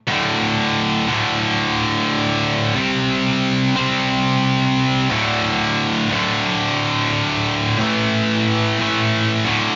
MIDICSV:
0, 0, Header, 1, 2, 480
1, 0, Start_track
1, 0, Tempo, 668896
1, 60, Time_signature, 4, 2, 24, 8
1, 7001, End_track
2, 0, Start_track
2, 0, Title_t, "Distorted electric guitar"
2, 0, Program_c, 0, 30
2, 52, Note_on_c, 0, 38, 95
2, 67, Note_on_c, 0, 45, 89
2, 81, Note_on_c, 0, 50, 100
2, 762, Note_off_c, 0, 38, 0
2, 766, Note_off_c, 0, 50, 0
2, 770, Note_off_c, 0, 45, 0
2, 775, Note_on_c, 0, 50, 102
2, 792, Note_on_c, 0, 45, 82
2, 807, Note_on_c, 0, 38, 74
2, 1964, Note_off_c, 0, 50, 0
2, 1973, Note_off_c, 0, 45, 0
2, 1974, Note_off_c, 0, 38, 0
2, 1977, Note_on_c, 0, 48, 93
2, 1991, Note_on_c, 0, 55, 97
2, 2004, Note_on_c, 0, 60, 103
2, 2685, Note_off_c, 0, 48, 0
2, 2690, Note_off_c, 0, 60, 0
2, 2692, Note_off_c, 0, 55, 0
2, 2698, Note_on_c, 0, 60, 98
2, 2716, Note_on_c, 0, 55, 82
2, 2728, Note_on_c, 0, 48, 74
2, 3646, Note_off_c, 0, 60, 0
2, 3651, Note_off_c, 0, 48, 0
2, 3654, Note_on_c, 0, 38, 96
2, 3655, Note_off_c, 0, 55, 0
2, 3673, Note_on_c, 0, 45, 92
2, 3683, Note_on_c, 0, 50, 111
2, 4364, Note_off_c, 0, 38, 0
2, 4373, Note_off_c, 0, 45, 0
2, 4379, Note_off_c, 0, 50, 0
2, 4381, Note_on_c, 0, 38, 78
2, 4395, Note_on_c, 0, 45, 72
2, 4410, Note_on_c, 0, 50, 87
2, 5567, Note_off_c, 0, 38, 0
2, 5574, Note_off_c, 0, 45, 0
2, 5582, Note_off_c, 0, 50, 0
2, 5583, Note_on_c, 0, 45, 94
2, 5599, Note_on_c, 0, 52, 95
2, 5610, Note_on_c, 0, 57, 98
2, 6288, Note_off_c, 0, 45, 0
2, 6296, Note_off_c, 0, 52, 0
2, 6302, Note_off_c, 0, 57, 0
2, 6303, Note_on_c, 0, 45, 72
2, 6318, Note_on_c, 0, 52, 77
2, 6329, Note_on_c, 0, 57, 89
2, 6768, Note_off_c, 0, 45, 0
2, 6776, Note_off_c, 0, 52, 0
2, 6781, Note_off_c, 0, 57, 0
2, 6782, Note_on_c, 0, 38, 90
2, 6799, Note_on_c, 0, 45, 87
2, 6809, Note_on_c, 0, 50, 98
2, 7001, Note_off_c, 0, 38, 0
2, 7001, Note_off_c, 0, 45, 0
2, 7001, Note_off_c, 0, 50, 0
2, 7001, End_track
0, 0, End_of_file